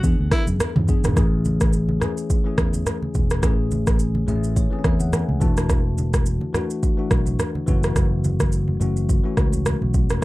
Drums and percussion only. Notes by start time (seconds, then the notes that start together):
0.04 kick, shaker
0.31 kick, cross-stick, open hi-hat, shaker
0.47 high conga, shaker
0.60 cross-stick, low conga, shaker
0.76 mid tom, high conga
0.88 kick, shaker
1.04 cross-stick, mid tom, shaker
1.17 kick, cross-stick, low conga, shaker
1.45 high conga, shaker
1.61 kick, cross-stick, high conga, shaker
1.73 shaker
1.89 high conga
2.01 cross-stick, low conga, shaker
2.17 shaker
2.30 kick, shaker
2.58 kick, cross-stick, shaker
2.73 high conga, shaker
2.86 cross-stick, low conga, shaker
3.02 high conga
3.15 kick, shaker
3.30 cross-stick, shaker
3.43 kick, cross-stick, low conga, shaker
3.71 high conga, shaker
3.87 kick, cross-stick, high conga, shaker
3.99 shaker
4.15 high conga
4.28 low conga, shaker
4.44 shaker
4.56 kick, shaker
4.84 kick, cross-stick, shaker
4.99 high conga, shaker
5.13 cross-stick, low conga, shaker
5.29 high conga
5.41 kick, shaker
5.57 cross-stick, shaker
5.70 kick, cross-stick, low conga, shaker
5.98 high conga, shaker
6.13 kick, cross-stick, high conga, shaker
6.26 shaker
6.41 high conga
6.54 cross-stick, low conga, shaker
6.70 shaker
6.83 kick, shaker
7.11 kick, cross-stick, shaker
7.26 high conga, shaker
7.39 cross-stick, low conga, shaker
7.55 high conga
7.68 kick, shaker
7.83 cross-stick, shaker
7.96 kick, cross-stick, low conga, shaker
8.24 high conga, shaker
8.40 kick, cross-stick, high conga, shaker
8.52 shaker
8.68 high conga
8.81 low conga, shaker
8.97 shaker
9.09 kick, shaker
9.37 kick, cross-stick, shaker
9.52 high conga, shaker
9.66 cross-stick, low conga, shaker
9.82 high conga
9.94 kick, shaker
10.10 cross-stick, shaker